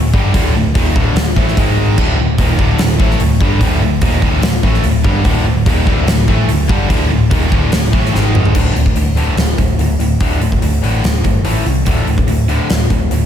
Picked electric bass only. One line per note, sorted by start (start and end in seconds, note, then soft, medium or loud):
0.00 0.13 D1 medium
0.13 0.33 G1 medium
0.34 0.53 D1 medium
0.55 0.74 D1 medium
0.75 0.94 D#1 medium
0.96 1.15 D1 medium
1.17 1.36 D1 medium
1.36 1.56 A1 loud
1.58 1.95 G#1 loud
1.98 2.17 D1 medium
2.19 2.38 D1 medium
2.38 2.58 D#1 loud
2.58 2.78 D1 loud
2.79 2.99 D1 medium
3.00 3.19 A1 loud
3.21 3.40 D1 medium
3.41 3.60 G1 medium
3.61 3.80 D1 loud
3.82 4.01 D1 medium
4.02 4.21 D#1 medium
4.22 4.42 D1 loud
4.43 4.62 D1 medium
4.64 4.83 A1 medium
4.84 5.03 D1 medium
5.05 5.24 G1 medium
5.25 5.45 D1 loud
5.46 5.65 D1 medium
5.66 5.86 D#1 medium
5.87 6.06 D1 loud
6.07 6.27 D1 medium
6.28 6.47 A1 loud
6.49 6.68 D1 medium
6.70 6.89 G1 medium
6.90 7.09 D1 medium
7.10 7.29 D1 medium
7.31 7.50 D#1 loud
7.53 7.71 D1 medium
7.74 7.92 D1 medium
7.93 8.12 A1 loud
8.13 8.52 G#1 medium
8.55 8.69 D1 medium
8.75 8.90 D1 medium
8.96 9.25 D1 medium
9.36 9.51 D1 medium
9.59 9.73 D1 medium
9.79 9.94 D1 medium
9.99 10.14 D1 medium
10.21 10.35 D1 medium
10.41 10.56 D1 medium
10.62 10.77 D1 medium
10.83 10.98 A1 medium
11.05 11.19 D1 medium
11.24 11.39 G1 medium
11.46 11.60 A1 medium
11.66 11.81 C2 medium
11.86 12.01 D1 loud
12.07 12.22 D1 medium
12.27 12.57 D1 medium
12.71 12.85 D1 medium
12.90 13.05 D1 medium
13.11 13.26 D1 medium